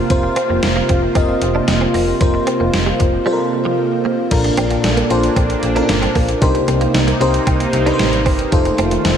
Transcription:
Already playing: C3 A#3 C4 F4 A#4 C5
0.10 F1 C4 F4 A#4 C5, kick, closed hi-hat
0.23 muted clean electric guitar stroke
0.36 C4, closed hi-hat
0.50 F1 A#3
0.63 F1, muted clean electric guitar stroke, snare, closed hi-hat
0.76 A#3
0.89 F1 C4, kick, closed hi-hat
1.15 F1 C4 F4 A#4 D#5, kick, closed hi-hat
1.28 muted clean electric guitar stroke
1.42 F1, closed hi-hat
1.55 D4
1.68 F1, muted clean electric guitar stroke, snare, closed hi-hat
1.81 C4
1.94 F1 A#3, open hi-hat
2.20 F1 C4 F4 A#4 C5, kick, closed hi-hat
2.34 muted clean electric guitar stroke
2.47 C4, closed hi-hat
2.60 F1 A#3
2.73 F1, muted clean electric guitar stroke, snare, closed hi-hat
2.86 G3
3.00 F1 F3, kick, closed hi-hat
3.26 G3 C4 F4 A4 C5
3.33 A#4
3.39 muted clean electric guitar stroke
3.65 F3
4.05 A#3
4.31 A#1 A#2 A#3 D4 F4 A4 A#4, kick, closed hi-hat, crash
4.44 muted clean electric guitar stroke, closed hi-hat
4.57 A#1 C4, closed hi-hat
4.70 A#3, closed hi-hat
4.84 A#1, muted clean electric guitar stroke, snare, closed hi-hat
4.97 A#3, closed hi-hat
5.10 A#1 C4 D4 F4 A4 C5, closed hi-hat
5.23 closed hi-hat
5.36 A#1 C4, kick, closed hi-hat
5.49 muted clean electric guitar stroke, closed hi-hat
5.63 A#1, closed hi-hat
5.75 C#4 D4 F4 A4 A#4, closed hi-hat
5.82 D4
5.89 G1, muted clean electric guitar stroke, snare, closed hi-hat
6.02 C4, closed hi-hat
6.15 A#1 A#3, kick, open hi-hat
6.29 closed hi-hat
6.41 C2 C3 A#3 D#4 G4 A#4 C5, kick, closed hi-hat
6.55 muted clean electric guitar stroke, closed hi-hat
6.68 C2 C4, closed hi-hat
6.81 A#3, closed hi-hat
6.94 C2, muted clean electric guitar stroke, snare, closed hi-hat
7.07 A#3, closed hi-hat
7.20 C2 C4 D#4 G4 A#4 C5, closed hi-hat
7.34 closed hi-hat
7.47 C2 C4, kick, closed hi-hat
7.60 muted clean electric guitar stroke, closed hi-hat
7.73 C2, closed hi-hat
7.86 D4 D#4 G4 A#4 B4, closed hi-hat
7.94 C5
7.99 A1, snare, closed hi-hat
8.13 closed hi-hat
8.26 G1 C4, kick, open hi-hat
8.39 closed hi-hat
8.52 F1 D#3 A3 D#4 F4 A4 C5, kick, closed hi-hat
8.65 muted clean electric guitar stroke, closed hi-hat
8.78 F1 C4, closed hi-hat
8.91 A3, closed hi-hat
9.05 F1, muted clean electric guitar stroke, snare, closed hi-hat

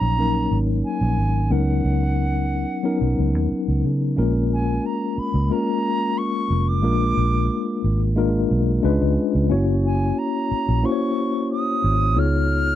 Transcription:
Already playing: F#3 A#3 C#4 D#4 C#5 A#5
0.01 A#1
0.18 F#3 A#3 C#4 D#4 A#4
0.51 G#1
0.85 G#5
1.01 A#1
1.18 G#1
1.50 C#2 F#3 B3 C#4 D#4 A#4 F#5
1.84 C#2
2.83 F#3 B3 C#4 D#4 A#4
3.01 B1
3.19 C#2
3.35 D#2
3.52 muted fingered electric bass stroke
3.68 C#2
3.85 C#3
4.16 A#1 G#3 A#3 C#4 F4 A#4
4.53 G#5
4.86 A#5
5.18 B5, muted fingered electric bass stroke
5.34 C#2
5.44 B5
5.49 G#3 A#3 C#4 F4 A#4 A#5
6.18 C#6
6.50 F1
6.68 D6
6.82 A#1 G#3 A#3 D4 F4 A#4
7.17 A#1
7.84 G#1
8.16 G#3 A#3 D4 F4 A#4
8.51 B1
8.83 C#2 G#3 C#4 D4 F4 B4
9.02 C#2
9.35 C#2
9.49 F#1 A#3 C#4 E4 F#4 C#5
9.86 G#5
10.19 A#5
10.51 muted fingered electric bass stroke
10.68 A#1
10.83 A#3 C#4 E4 F#4 C5 C#6
10.92 C#5
11.52 D#6
11.84 G#1
12.16 C#2 B3 D#4 F4 G#4 C#5 F6

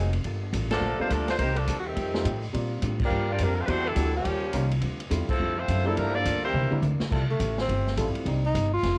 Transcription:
Already playing: F1 G#2 C3 D#3 F#3 G#3 A#3 C4 D#4 G#4
0.13 ride
0.24 G1 G3 A#3 F4 A4, kick, ride
0.52 A1 G3 A#3 F4 A4, kick, hi-hat pedal, ride
0.70 D3 F3 A3 A#3 D4 A4, snare, ride
0.81 A#1 G3 A#3 F4 A4
0.99 G3 A3 A#3 C4 D4 F4 C5, muted upright bass stroke
1.09 D2 D3 F3 G3 A3 A#3 D4 F4 A4, kick, hi-hat pedal, ride
1.27 A3 C4 D4 F4 C5, snare, ride
1.38 C2 C3 D#3 G3 A#3 C4 D#4 G4 C5, kick, ride
1.56 F3 A3 A#3 D4 A4, ride
1.68 D#2 C3 G3 A#3 D#4, kick, hi-hat pedal, ride
1.79 F#4
1.85 C3 D#3 G3 A3 C4 G4
1.96 F2 F3 A3 D#4 G4, kick, ride
2.14 G3 A3 C4 D#4 F4, snare
2.25 A2 F3 A3 D#4 G4, kick, hi-hat pedal, ride
2.53 A#2 G3 A#3 C4 D4 F4, kick, ride
2.82 A2 A#2 G3 D4 F4, kick, hi-hat pedal, ride
3.00 F3, kick, crash
3.04 G3 A#3 D4 F4 A#4
3.10 G2 A#2 G3 D4 F4
3.30 F3 G3 A#3 D4 F4 G4 D5
3.39 F2 A#2 F3 G3 A#3 D4 F4, kick, hi-hat pedal, ride
3.43 G3 D4 F4 A#4
3.55 A#4
3.59 A3 C4 D4 F4 C5
3.66 E2 E3 G3 A#3 C4 D4 E4 F#4 B4, kick, ride
3.70 A3 D4 F#4 G4 C5
3.86 A#2 D3 G3 A3 D4 E4 A4
3.95 D2 E3 G3 A#3 D4 E4 F#4 G4, kick, hi-hat pedal, ride
4.14 A#2 C#3 F3 G3 A#3 C#4 G4
4.24 D#2 D#3 G3 C#4 F4, kick, ride
4.53 C2 D#3 G3 A#3 C#4 D#4 F4, kick, hi-hat pedal, ride
4.71 ride
4.81 D2 D3 G3 C4 F4, kick, ride
5.00 ride
5.10 E2 D3 G3 A3 C4 E4 F4, kick, hi-hat pedal, ride
5.29 C3 F3 A3 C4 E4 A4, muted upright bass stroke, kick, crash
5.39 F2 D3 G3 C4 F4
5.57 F3 A3 C4 E4 F4 C5
5.68 F#2 D3 G3 C4 F4, kick, hi-hat pedal, ride
5.85 C3 F3 G3 A3 A#3 C4 D4 E4 A4
5.95 G2 D3 F3 G3 A3 A#3 D4 F4 A4 A#4, kick, ride
6.14 F3 A#3 D4 F4 A4 D5
6.25 D2 G3 A#3 F4 A4, kick, hi-hat pedal, ride
6.44 E3 G3 A#3 C4 E4 G4 C5
6.53 C2 C3 E3 A#3 D4, mid tom
6.71 G3 A#3 C4 D4 E4, muted upright bass stroke, mid tom
6.82 D2 C3 E3 A#3 D4, hi-hat pedal, mid tom
7.00 muted upright bass stroke, snare
7.10 C2 F3 G3 A3 E4 F4 G4 A4, kick, crash
7.31 A3
7.40 A1 F3 A3 E4 G4, kick, hi-hat pedal, ride
7.58 C4, snare
7.68 G1 F3 A3 E4 G4, kick, ride
7.87 snare
7.96 A1 F3 G3 A3 C4 E4 F4 G4 A4, kick, hi-hat pedal, ride
8.15 muted upright bass stroke, ride
8.25 C2 C3 G3 A#3 C4 D4 D#4, kick, ride
8.46 D#4
8.55 G1 C3 G3 A#3 D#4, kick, hi-hat pedal, ride
8.74 F4
8.83 F1 F2 D#3 A3 C4, kick, snare, ride

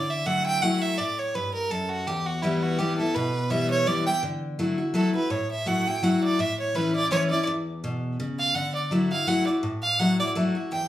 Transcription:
Already playing: D3 D5
0.10 E5
0.26 F#3 A3 E4 F#4 F#5
0.46 G5
0.62 F#3 A3 E4 F#4 F#5
0.82 E5
0.98 A2 D5
1.19 C#5
1.35 G2 B4
1.54 A#4
1.71 F#2 A4
1.89 F#4
2.07 E2 G4
2.26 F#4
2.42 E3 G3 B3 E4
2.63 F#4
2.79 E3 G3 B3 E4 G4
2.98 B3 E4 A4
3.15 B2 B4
3.50 E3 G3 B3 E4 E5
3.71 C#5
3.86 E3 G3 B3 E4 D5
4.06 B3 E4 G5
4.23 D3
4.59 F#3 A3 E4 F#4
4.78 E4 F#4
4.94 F#3 A3 E4 F#4 A4
5.14 E4 F#4 B4
5.30 A2 C#5
5.51 E5
5.66 F#3 A3 E4 F#4 F#5
5.86 E4 F#4 G5
6.03 F#3 A3 E4 F#4 F#5
6.24 D5
6.39 A2 E5
6.60 C#5
6.75 E3 A3 C#4 E4 B4
6.95 C#4 E4 D5
7.11 E3 A3 C#4 E4 C#5
7.30 C#4 E4 D5
7.47 E2
7.84 B2
8.20 C#3
8.39 F5
8.55 D3 F#5
8.75 D5
8.91 F#3 A3 E4 F#4
9.11 E4 F#4 F5
9.27 F#3 A3 E4 F#4 F#5
9.47 E4 F#4 D5
9.63 A2
9.83 F5
9.99 F#3 A3 E4 F#4 F#5
10.20 E4 F#4 D5
10.35 F#3 A3 E4 F#4
10.55 E4 F#4
10.72 E2 G5

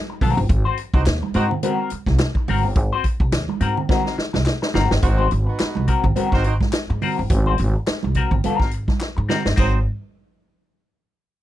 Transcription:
0.10 muted clean electric guitar stroke, muted conga
0.21 B1 C4 F#4 A#4, kick, open hi-hat, high conga, low conga
0.37 G1, muted clean electric guitar stroke
0.49 G#1, muted clean electric guitar stroke, kick, closed hi-hat, muted conga
0.65 C4 F#4 C5, muted conga
0.77 muted clean electric guitar stroke, closed hi-hat
0.93 C2 C4 D#4 F#4 C5, muted clean electric guitar stroke, kick
1.06 D#2, snare, clap, closed hi-hat, muted conga
1.23 muted clean electric guitar stroke, muted conga, high conga
1.34 G#2 C4 D#4 F#4 A#4 C5, closed hi-hat
1.51 muted clean electric guitar stroke, low conga
1.63 C4 F#4 A#4, closed hi-hat, muted conga, high conga, low conga
1.90 muted upright bass stroke, muted clean electric guitar stroke, closed hi-hat
2.06 C2, muted clean electric guitar stroke, kick, snare, high conga
2.18 muted clean electric guitar stroke, snare, clap, closed hi-hat, muted conga
2.35 muted clean electric guitar stroke, kick, muted conga
2.48 G#1 C4 F#4 A#4, open hi-hat, high conga, low conga
2.64 G1, muted clean electric guitar stroke
2.76 G#1, muted clean electric guitar stroke, kick, closed hi-hat, muted conga
2.93 C4 F#4 C5, muted conga
3.04 kick, closed hi-hat
3.20 C2, muted clean electric guitar stroke, kick
3.32 D#2, snare, clap, closed hi-hat
3.49 muted clean electric guitar stroke, muted conga, high conga
3.61 G#2 C4 F#4 A#4, closed hi-hat
3.77 muted clean electric guitar stroke, low conga
3.89 C4 F#4 A#4, kick, snare, muted conga, high conga, low conga
4.05 snare, muted conga
4.18 muted upright bass stroke, muted clean electric guitar stroke, snare
4.33 C2, muted clean electric guitar stroke, snare, high conga
4.45 muted clean electric guitar stroke, snare, clap, muted conga
4.62 muted clean electric guitar stroke, snare, muted conga
4.74 G#1 C4 F#4 A#4, snare, high conga, low conga
4.90 G1, muted clean electric guitar stroke, snare
5.02 G#1 C4 D#4 F#4 C5, muted clean electric guitar stroke, kick, closed hi-hat, muted conga
5.18 C4 F#4 C5, muted conga, high conga
5.30 G#1, muted clean electric guitar stroke, closed hi-hat
5.46 B3 D#4 F#4 B4, muted clean electric guitar stroke
5.59 muted upright bass stroke, snare, clap, closed hi-hat, muted conga
5.75 C2, muted clean electric guitar stroke, muted conga, high conga
5.88 C4 F#4 A#4, kick, closed hi-hat
6.04 G#1, muted clean electric guitar stroke, kick, low conga
6.16 C4 F#4 A#4, muted upright bass stroke, closed hi-hat, muted conga, high conga, low conga
6.32 G#1 C4 D#4 F#4 C5, kick, snare, muted conga
6.44 C4 D#4 F#4 C5, muted clean electric guitar stroke, closed hi-hat
6.61 muted clean electric guitar stroke, kick, snare, high conga
6.72 muted clean electric guitar stroke, snare, clap, closed hi-hat, muted conga
6.90 G#2, muted clean electric guitar stroke, muted conga
7.02 C4 F#4 A#4, open hi-hat, high conga, low conga
7.18 G1, muted clean electric guitar stroke
7.30 G#1, muted clean electric guitar stroke, kick, closed hi-hat, muted conga
7.46 C4 F#4 C5, muted conga, high conga
7.58 G#1, muted clean electric guitar stroke, closed hi-hat
7.76 muted clean electric guitar stroke
7.87 muted upright bass stroke, snare, clap, closed hi-hat, muted conga
8.03 C2, muted clean electric guitar stroke, muted conga, high conga
8.14 C4 F#4 A#4, kick, closed hi-hat
8.31 G#1, muted clean electric guitar stroke, kick, low conga
8.44 B3 F4 A4, muted upright bass stroke, closed hi-hat, high conga, low conga
8.55 C4 F#4 A#4, muted conga
8.60 G#1, kick, snare
8.71 muted clean electric guitar stroke, closed hi-hat
8.88 muted clean electric guitar stroke, kick, snare, high conga
9.00 muted clean electric guitar stroke, snare, clap, muted conga
9.17 G#2, muted clean electric guitar stroke, muted conga
9.29 C4 F#4 A#4, snare, high conga, low conga
9.44 G1, muted clean electric guitar stroke, snare
9.56 G#1 F#3 C4 D#4 F#4 A#4 C5, kick, clap, splash, high conga

